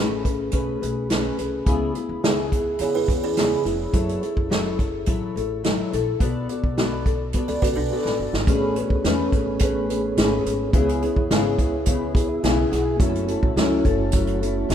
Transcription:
Already playing: upright bass A1, steel-string acoustic guitar A3 C#4 G#4 B4
0.24 steel-string acoustic guitar C#4 G#4 B4, kick, closed hi-hat
0.51 upright bass B1, steel-string acoustic guitar A3 C#4 G#4 B4, kick, closed hi-hat
0.81 upright bass B1, steel-string acoustic guitar C#4 G#4 B4, closed hi-hat
1.10 steel-string acoustic guitar A3 C#4 G#4 B4, snare, closed hi-hat
1.38 upright bass C2, steel-string acoustic guitar C#4 G#4 B4, closed hi-hat
1.66 upright bass C#2, steel-string acoustic guitar C#3 B3 E4 G#4, kick, closed hi-hat
1.94 steel-string acoustic guitar B3 E4 G#4, closed hi-hat
2.09 upright bass C#2
2.23 steel-string acoustic guitar C#3 B3 E4 G#4, snare, closed hi-hat
2.52 steel-string acoustic guitar B3 E4 G#4, kick, closed hi-hat
2.79 upright bass E2, steel-string acoustic guitar C#3 B3 E4 G#4, kalimba G#4 C#5, closed hi-hat
2.95 kalimba E4 B4
3.08 upright bass E2, steel-string acoustic guitar B3 E4 G#4, kick, closed hi-hat
3.24 kalimba C#4 G#4
3.36 steel-string acoustic guitar C#3 B3 E4 G#4, snare, closed hi-hat
3.64 upright bass F1, steel-string acoustic guitar B3 E4 G#4, closed hi-hat
3.92 upright bass F#1, steel-string acoustic guitar F#3 E4 A4 C#5, kick, closed hi-hat
4.09 closed hi-hat
4.21 steel-string acoustic guitar E4 A4 C#5, closed hi-hat
4.37 upright bass F#1, kick
4.50 steel-string acoustic guitar F#3 E4 A4 C#5, snare, closed hi-hat
4.78 steel-string acoustic guitar E4 A4 C#5, kick, closed hi-hat
5.06 upright bass A1, steel-string acoustic guitar F#3 E4 A4 C#5, kick, closed hi-hat
5.35 upright bass A1, steel-string acoustic guitar E4 A4 C#5, closed hi-hat
5.64 steel-string acoustic guitar F#3 E4 A4 C#5, snare, closed hi-hat
5.92 upright bass A#1, steel-string acoustic guitar E4 A4 C#5, snare, closed hi-hat
6.20 upright bass B1, steel-string acoustic guitar B3 F#4 A4 D5, kick, closed hi-hat
6.49 steel-string acoustic guitar F#4 A4 D5, closed hi-hat
6.64 upright bass B1, kick
6.77 steel-string acoustic guitar B3 F#4 A4 D5, snare, closed hi-hat
7.05 steel-string acoustic guitar F#4 A4 D5, kick, closed hi-hat
7.33 steel-string acoustic guitar B3 F#4 A4 D5, kick, closed hi-hat
7.48 upright bass C#2, kalimba A4 D5, closed hi-hat
7.62 upright bass C#2, kalimba F#4 B4, steel-string acoustic guitar F#4 A4 D5, kick, closed hi-hat
7.76 upright bass B1, kalimba D4 A4
7.91 steel-string acoustic guitar B3 F#4 A4 D5
8.05 upright bass A1, snare
8.19 upright bass G1, steel-string acoustic guitar F#4 A4 D5
8.33 upright bass G#1, snare
8.45 upright bass A1, steel-string acoustic guitar A3 C#4, tonewheel organ B3 G#4 A4, kick, closed hi-hat
8.49 steel-string acoustic guitar G#4 B4, tonewheel organ C#5
8.76 steel-string acoustic guitar C#4 G#4 B4, closed hi-hat
8.90 upright bass C#2, kick
9.04 upright bass E2, steel-string acoustic guitar A3 C#4 G#4 B4, snare, closed hi-hat
9.32 upright bass A1, steel-string acoustic guitar C#4 G#4 B4, kick, closed hi-hat
9.59 steel-string acoustic guitar A3 C#4 G#4 B4, kick, closed hi-hat
9.88 steel-string acoustic guitar C#4 G#4 B4, closed hi-hat
10.17 upright bass G#1, steel-string acoustic guitar A3 C#4 G#4 B4, snare, closed hi-hat
10.44 upright bass G#1, steel-string acoustic guitar C#4 G#4 B4, closed hi-hat
10.71 upright bass C#2, steel-string acoustic guitar C#3 B3 E4, tonewheel organ B3 D4 G#4, kick, closed hi-hat
10.75 tonewheel organ E4 C#5, steel-string acoustic guitar G#4
10.89 closed hi-hat
11.02 steel-string acoustic guitar B3 E4 G#4, closed hi-hat
11.16 upright bass E2, kick
11.31 upright bass G#1, steel-string acoustic guitar C#3 B3 E4 G#4, snare, closed hi-hat
11.59 upright bass C#2, steel-string acoustic guitar B3 E4 G#4, kick, closed hi-hat
11.86 steel-string acoustic guitar C#3 B3 E4 G#4, kick, closed hi-hat
12.15 steel-string acoustic guitar B3 E4 G#4, tonewheel organ C#5, kick, closed hi-hat
12.29 tonewheel organ E5
12.43 upright bass B1, steel-string acoustic guitar C#3 B3 E4 G#4, tonewheel organ G#5, snare, closed hi-hat
12.71 upright bass B1, steel-string acoustic guitar B3 E4 G#4, tonewheel organ F#5, snare, closed hi-hat
12.85 tonewheel organ G#5
12.97 upright bass F#1, steel-string acoustic guitar F#3 C#4 E4, tonewheel organ A3 E4 F#4, kick, closed hi-hat
13.01 steel-string acoustic guitar A4, tonewheel organ C#5
13.15 closed hi-hat
13.27 steel-string acoustic guitar C#4 E4 A4, closed hi-hat
13.43 upright bass A1, kick
13.56 upright bass C#2, steel-string acoustic guitar F#3 C#4 E4 A4, snare, closed hi-hat
13.85 upright bass F#1, steel-string acoustic guitar C#4 E4 A4, kick, closed hi-hat
14.12 steel-string acoustic guitar F#3 C#4 E4 A4, kick, closed hi-hat
14.27 closed hi-hat
14.41 steel-string acoustic guitar C#4 E4 A4, closed hi-hat
14.69 upright bass E1, steel-string acoustic guitar F#3 C#4 E4 A4, snare, closed hi-hat

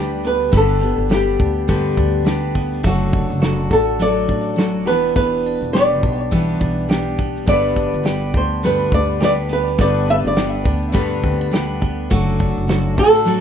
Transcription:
Already playing: upright bass D2, steel-string acoustic guitar D3 G3 B3 D4 G4, clean electric guitar B3 D4 G4, nylon-string guitar D5
0.24 clean electric guitar B3, nylon-string guitar B4, shaker
0.41 shaker
0.52 upright bass G1, steel-string acoustic guitar G2 D3 G3 B3 D4 G4, clean electric guitar B3, kick, shaker
0.57 nylon-string guitar A4
0.80 steel-string acoustic guitar G3 B3 D4 G4, clean electric guitar D4, shaker
0.98 upright bass G1
1.09 steel-string acoustic guitar G3 B3 D4 G4, clean electric guitar G4, snare, shaker
1.14 nylon-string guitar G4
1.39 upright bass D2, clean electric guitar D4, kick, shaker
1.68 steel-string acoustic guitar G2 D3 G3 B3 D4 G4, clean electric guitar B3, kick, shaker
1.97 upright bass D2, clean electric guitar D4, kick, shaker
2.24 steel-string acoustic guitar G3 B3 D4 G4, clean electric guitar G4, snare, shaker
2.55 clean electric guitar B3, kick, shaker
2.73 shaker
2.83 upright bass F#1, steel-string acoustic guitar F#3 D4 F#4 A4, clean electric guitar A3, nylon-string guitar F#4, kick, shaker
3.13 clean electric guitar D4, kick, shaker
3.30 upright bass F#1, shaker
3.41 steel-string acoustic guitar F#3 D4 F#4 A4, clean electric guitar F#4, snare, shaker
3.70 upright bass A1, clean electric guitar D4, steel-string acoustic guitar D4 F#4 A4, nylon-string guitar A4, kick, shaker
3.99 steel-string acoustic guitar F#3 D4 F#4 A4, clean electric guitar A3, nylon-string guitar D5, shaker
4.28 upright bass A1, clean electric guitar D4, kick, shaker
4.56 steel-string acoustic guitar F#3 D4 F#4, clean electric guitar F#4, snare, shaker
4.60 steel-string acoustic guitar A4
4.86 upright bass E1, steel-string acoustic guitar E3 G3 B3 D4 G4, clean electric guitar B3, nylon-string guitar B4, shaker
5.16 clean electric guitar B3, nylon-string guitar B4, kick, shaker
5.46 clean electric guitar D4, shaker
5.61 upright bass E1, shaker
5.73 steel-string acoustic guitar G3 B3 D4 G4, clean electric guitar G4, nylon-string guitar D5, snare, shaker
6.03 upright bass B1, clean electric guitar D4, kick, shaker
6.31 steel-string acoustic guitar E3 G3 B3 D4 G4, clean electric guitar B3, kick, shaker
6.61 upright bass B1, clean electric guitar D4, kick, shaker
6.89 steel-string acoustic guitar G3 B3 D4 G4, clean electric guitar G4, snare, shaker
7.18 clean electric guitar B3, kick, shaker
7.37 shaker
7.46 upright bass G1, steel-string acoustic guitar G2 D3 G3 B3 D4 B4, clean electric guitar B3, nylon-string guitar D5, kick, shaker
7.76 clean electric guitar D4, kick, shaker
7.94 upright bass G1, shaker
8.04 steel-string acoustic guitar G3 B3 D4 B4, clean electric guitar G4, snare, shaker
8.34 upright bass D2, clean electric guitar D4, nylon-string guitar C5, kick, shaker
8.63 steel-string acoustic guitar G2 D3 G3 B3 D4 B4, clean electric guitar B3, nylon-string guitar B4, shaker
8.92 upright bass D2, clean electric guitar D4, nylon-string guitar D5, kick, shaker
9.20 steel-string acoustic guitar G3 B3 D4 B4, clean electric guitar G4, nylon-string guitar D5, snare, shaker
9.49 clean electric guitar B3, nylon-string guitar B4, shaker
9.68 shaker
9.78 upright bass G1, steel-string acoustic guitar G2 D3 G3 B3 D4 B4, clean electric guitar B3, nylon-string guitar D5, kick, shaker
10.08 clean electric guitar D4, nylon-string guitar E5, shaker
10.25 upright bass G1, nylon-string guitar D5, shaker
10.36 steel-string acoustic guitar G3 B3 D4 B4, clean electric guitar G4, snare, shaker
10.64 upright bass D2, steel-string acoustic guitar G3 B3 D4 B4, clean electric guitar D4, kick, shaker
10.83 shaker
10.92 steel-string acoustic guitar G2 D3 G3 B3 D4 B4, clean electric guitar B3, kick, shaker
11.24 upright bass D2, clean electric guitar C4, kick, shaker
11.41 clean electric guitar D4, shaker
11.51 steel-string acoustic guitar G3 B3 D4 B4, clean electric guitar G4, snare, shaker
11.82 clean electric guitar B3, kick, shaker
12.10 upright bass F#1, steel-string acoustic guitar F#3 D4 F#4 A4, clean electric guitar A3, nylon-string guitar F#4, kick, shaker
12.40 clean electric guitar D4, kick, shaker
12.58 upright bass F#1
12.68 steel-string acoustic guitar F#3 D4 F#4 A4, clean electric guitar F#4, snare, shaker
12.97 clean electric guitar C4, steel-string acoustic guitar D4 F#4 A4, nylon-string guitar A4, kick, shaker
13.16 clean electric guitar D4, shaker
13.25 steel-string acoustic guitar F#3 D4 F#4 A4, clean electric guitar A3, shaker

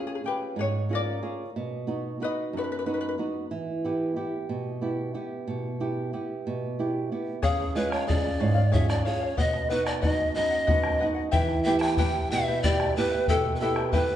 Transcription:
Already playing: nylon-string guitar C#3 C#4 F4 G#4
0.07 charango G#4
0.15 charango G#4
0.24 nylon-string guitar C#4 F4 G#4, charango G4 B4
0.56 nylon-string guitar G#2, charango G#4
0.61 charango C#5
0.89 nylon-string guitar C#3 F4 G#4, charango A#4
0.95 charango D5
1.23 nylon-string guitar F4 G#4 C#5
1.56 nylon-string guitar B2
1.87 nylon-string guitar B3 D#4 F#4
2.20 nylon-string guitar B3 D#4 F#4, charango B4
2.24 charango D#5
2.53 nylon-string guitar F#2, charango F#4
2.58 charango B4
2.64 charango B4
2.72 charango B4
2.79 charango B4
2.86 nylon-string guitar B3 D#4 F#4, charango B4
2.94 charango B4
3.01 charango B4
3.09 charango B4
3.18 nylon-string guitar B3 D#4 F#4
3.51 nylon-string guitar E3
3.84 nylon-string guitar B3 E4 G4
4.16 nylon-string guitar B3 E4 G4
4.49 nylon-string guitar B2
4.81 nylon-string guitar B3 E4 G4
5.14 nylon-string guitar B3 E4 G4
5.48 nylon-string guitar B2
5.80 nylon-string guitar B3 E4 G4
6.13 nylon-string guitar B3 E4 G4
6.47 nylon-string guitar B2
6.79 nylon-string guitar B3 E4 G4
7.12 nylon-string guitar B3 E4 G4
7.42 nylon-string guitar C#3, charango G#4 C#5 F5, pan flute G#4, bombo low
7.60 bombo rim
7.75 nylon-string guitar G#3 F4 G#4, charango G#4 C#5 F5, pan flute B4
7.90 charango C#5 F5, pan flute C#5, bombo rim
8.07 nylon-string guitar C#3 F4 G#4, charango G#4 F5, pan flute D5, bombo rim, bombo low
8.25 bombo rim
8.39 nylon-string guitar G#2, charango G#4 C#5 F5, bombo rim
8.54 charango C#5 F5
8.72 nylon-string guitar C#4 F4 G#4, charango G#4 C#5 F5, pan flute E5, bombo rim, bombo low
8.89 pan flute D5, bombo rim
9.03 nylon-string guitar C#4 F4 G#4, charango G#4 C#5 F5, pan flute C#5
9.21 charango C#5 F5, bombo rim
9.37 nylon-string guitar B2, charango B4 D#5 F#5, pan flute D#5, bombo low
9.54 bombo rim
9.69 nylon-string guitar B3 D#4 F#4, charango B4 D#5 F#5, pan flute B4
9.84 pan flute D5, charango D#5 F#5, bombo rim
10.01 nylon-string guitar B3 D#4 F#4, charango B4 D#5 F#5, pan flute D#5, bombo rim, bombo low
10.19 bombo rim
10.35 nylon-string guitar F#2, charango B4 D#5 F#5, pan flute D#5, bombo rim
10.51 charango D#5 F#5
10.67 nylon-string guitar B3 D#4 F#4, charango B4 D#5 F#5, bombo rim, bombo low
10.84 bombo rim
10.99 nylon-string guitar B3 D#4 F#4, charango B4 D#5 F#5
11.14 charango D#5 F#5, bombo rim
11.31 nylon-string guitar E3, charango E4 G4 B4 E5 G5, pan flute E5, bombo low
11.49 bombo rim
11.64 nylon-string guitar B3 E4 G4, charango E4 B4 E5 G5, pan flute E5
11.79 charango E4 B4 G5, pan flute G5 A5, bombo rim
11.97 nylon-string guitar B3 E4 G4, charango E4 G4 B4 E5 G5, pan flute G5, bombo rim, bombo low
12.15 bombo rim
12.31 nylon-string guitar B2, charango E4 B4 E5 G5, pan flute E5, bombo rim
12.48 charango E4 B4 G5
12.63 nylon-string guitar B3 E4 G4, charango E4 G4 B4 E5 G5, pan flute D5, bombo low
12.80 bombo rim
12.97 nylon-string guitar B3 E4 G4, charango E4 B4 E5 G5, pan flute B4
13.12 charango E4 B4 G5, bombo rim
13.28 nylon-string guitar B2, charango E4 G4 B4 E5 G5, pan flute A4, bombo low
13.56 pan flute B4
13.60 nylon-string guitar B3 E4 G4, charango E4 B4 E5 G5, pan flute A4, bombo rim
13.76 charango E4 B4 G5, bombo rim
13.92 nylon-string guitar B3 E4 G4, charango E4 G4 B4 E5 G5, pan flute B4, bombo rim, bombo low

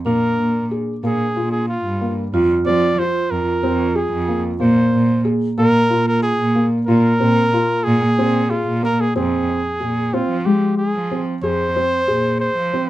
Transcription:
0.06 cello A#2, felt piano A#3, vibraphone D4, flugelhorn A#4
0.39 cello A#2
0.71 felt piano G#4
1.03 cello A#2, felt piano A#3, flugelhorn G#4
1.36 cello A#2, felt piano F4
1.51 flugelhorn G#4
1.68 flugelhorn F4
1.85 cello G2
2.01 felt piano A#3
2.34 cello F2, vibraphone F4, felt piano F4
2.66 cello F3, felt piano C4, flugelhorn D5
2.99 felt piano F4, flugelhorn C5
3.31 cello F2, flugelhorn A#4
3.63 cello F2, felt piano C4
3.95 felt piano G#4, flugelhorn G#4
4.13 cello F2
4.28 felt piano A#3
4.60 cello A#2, felt piano A#3, vibraphone A#3, flugelhorn C5
4.95 cello A#2
5.25 felt piano G#4
5.58 cello A#2, felt piano A#3, flugelhorn A#4
5.90 cello A#2, felt piano F4
6.08 flugelhorn A#4
6.23 flugelhorn G#4
6.40 cello A#2
6.55 felt piano A#3
6.87 cello A#2, felt piano F4, flugelhorn A#4
7.20 cello A#2, felt piano C4
7.53 felt piano F4
7.84 cello A#2, flugelhorn G#4
8.18 cello A#2, felt piano C4
8.50 flugelhorn F4, felt piano G#4
8.68 cello A#2
8.83 felt piano A#3, flugelhorn A#4
9.00 flugelhorn G#4
9.16 cello F2, felt piano C4, flugelhorn G#4
9.80 cello A#2, felt piano G#4
10.14 felt piano C4, flugelhorn F4
10.30 cello F3
10.45 felt piano G#3, flugelhorn G4
10.78 flugelhorn G#4
10.94 cello F3
11.11 felt piano C4
11.43 cello F2, felt piano G#4, flugelhorn C5
11.76 felt piano C4
12.08 cello A#2, felt piano G#4
12.40 flugelhorn C5
12.57 cello F3
12.73 felt piano C4

